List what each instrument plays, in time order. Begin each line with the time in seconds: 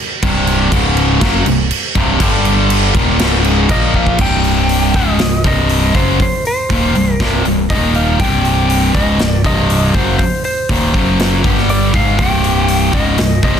0.23 picked electric bass C1, distorted electric guitar C2 G2 C3, kick, crash
0.47 crash
0.71 picked electric bass C#1, distorted electric guitar C#2 G#2 C#3, kick, crash
0.97 crash
1.21 picked electric bass F#1, distorted electric guitar F#2 C#3 F#3, kick, snare, crash
1.46 picked electric bass C1, distorted electric guitar C2 G2, crash
1.71 crash
1.95 picked electric bass C1, distorted electric guitar C2 G2 C3, kick, crash
2.20 picked electric bass G1, distorted electric guitar G2 D3 G3, kick, crash
2.45 crash
2.70 crash
2.95 picked electric bass D#1, distorted electric guitar D#2 A#2 D#3, kick, crash
3.19 picked electric bass C#1, distorted electric guitar C#2 G#2 C#3, snare, crash
3.44 crash
3.69 picked electric bass A#1, distorted electric guitar A#2 F3 A#3, lead electric guitar D#5, kick, crash
3.94 lead electric guitar F5, kick
4.07 kick
4.18 picked electric bass C1, distorted electric guitar C2 G2 C3, lead electric guitar G5, kick, crash
4.44 open hi-hat
4.69 open hi-hat
4.94 picked electric bass C#1, distorted electric guitar C#2 G#2 C#3, lead electric guitar D#5, kick
5.19 picked electric bass C1, distorted electric guitar C2 G2, snare, open hi-hat
5.44 picked electric bass C1, distorted electric guitar C2 G2 C3, lead electric guitar D#5, kick, open hi-hat
5.69 open hi-hat
5.94 picked electric bass F#1, distorted electric guitar F#2 C#3 F#3, lead electric guitar C5, kick, open hi-hat
6.20 lead electric guitar C5, kick, open hi-hat
6.45 lead electric guitar C5, open hi-hat
6.70 picked electric bass D#1, distorted electric guitar D#2 A#2 D#3, kick, open hi-hat
6.95 picked electric bass C1, distorted electric guitar C2 G2, open hi-hat
7.14 lead electric guitar A#4
7.20 picked electric bass C1, distorted electric guitar C2 G2 C3, kick, snare, open hi-hat
7.45 picked electric bass C1, distorted electric guitar C2 G2, open hi-hat
7.70 picked electric bass D#1, distorted electric guitar D#2 A#2 D#3, lead electric guitar D#5, kick, open hi-hat
7.95 lead electric guitar F5, open hi-hat
8.20 picked electric bass C1, distorted electric guitar C2 G2 C3, lead electric guitar G5, kick, open hi-hat
8.45 open hi-hat
8.70 open hi-hat
8.95 picked electric bass C#1, distorted electric guitar C#2 G#2 C#3, lead electric guitar D#5, kick, open hi-hat
9.19 picked electric bass C1, distorted electric guitar C2 G2, snare, open hi-hat
9.30 lead electric guitar D5
9.44 picked electric bass C1, distorted electric guitar C2 G2 C3, lead electric guitar D#5, kick, open hi-hat
9.70 open hi-hat
9.94 picked electric bass F#1, distorted electric guitar F#2 C#3 F#3, lead electric guitar C5, kick, open hi-hat
10.19 lead electric guitar C5, kick, open hi-hat
10.44 lead electric guitar C5, open hi-hat
10.69 picked electric bass D#1, distorted electric guitar D#2 A#2 D#3, kick, open hi-hat
10.94 picked electric bass F#1, distorted electric guitar F#2 C#3 F#3, kick, open hi-hat
11.20 snare, open hi-hat
11.43 picked electric bass G1, distorted electric guitar G2 D3 G3, kick, open hi-hat
11.58 snare
11.69 lead electric guitar D5, open hi-hat
11.93 picked electric bass G#1, distorted electric guitar G#2 D#3 G#3, lead electric guitar F5, kick, open hi-hat
12.18 picked electric bass C1, distorted electric guitar C2 G2 C3, lead electric guitar G5, kick, open hi-hat
12.44 open hi-hat
12.68 open hi-hat
12.93 picked electric bass C#1, distorted electric guitar C#2 G#2 C#3, lead electric guitar D#5, kick, open hi-hat
13.18 picked electric bass C1, distorted electric guitar C2 G2, snare, open hi-hat
13.43 picked electric bass C1, distorted electric guitar C2 G2 C3, lead electric guitar D#5, kick, open hi-hat
13.56 snare